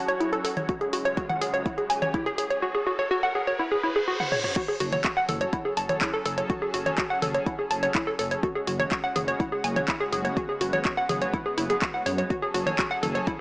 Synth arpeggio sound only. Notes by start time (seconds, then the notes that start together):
0.08 C#5
0.20 E4
0.33 A4
0.45 A4
0.57 C#5
0.69 F#4
0.81 G#4
0.93 F#4
1.05 C#5
1.17 F#4
1.29 F#5
1.41 G#4
1.54 C#5
1.66 E4
1.78 G#4
1.90 G#5
2.02 C#5
2.14 E4
2.26 G#4
2.38 G#4
2.50 C#5
2.62 F#4
2.75 G#4
2.87 F#4
2.99 C#5
3.11 F#4
3.23 F#5
3.35 G#4
3.47 C#5
3.59 E4
3.72 G#4
3.83 E4
3.96 G#4
4.08 F#4
4.20 F#5
4.32 C#5
4.44 C#5
4.56 F#4
4.68 G#4
4.80 F#4
4.93 C#5
5.05 F#4
5.17 F#5
5.29 A4
5.41 C#5
5.53 E4
5.65 G#4
5.77 A5
5.89 C#5
6.01 E4
6.14 A4
6.26 A4
6.38 C#5
6.50 F#4
6.62 G#4
6.74 F#4
6.86 C#5
6.98 F#4
7.10 F#5
7.22 A4
7.35 C#5
7.46 E4
7.59 G#4
7.71 A5
7.83 C#5
7.95 E4
8.07 A4
8.19 A4
8.31 C#5
8.43 F#4
8.55 G#4
8.67 F#4
8.80 C#5
8.91 F#4
9.04 F#5
9.16 G#4
9.28 C#5
9.40 E4
9.52 G#4
9.64 G#5
9.76 C#5
9.88 E4
10.00 G#4
10.12 G#4
10.25 C#5
10.37 F#4
10.49 G#4
10.61 F#4
10.73 C#5
10.85 F#4
10.97 F#5
11.09 G#4
11.22 C#5
11.34 E4
11.46 G#4
11.58 E4
11.70 G#4
11.82 F#4
11.94 F#5
12.06 C#5
12.18 C#5
12.30 F#4
12.42 G#4
12.54 F#4
12.67 C#5
12.79 F#4
12.91 F#5
13.03 A4
13.15 C#5
13.27 E4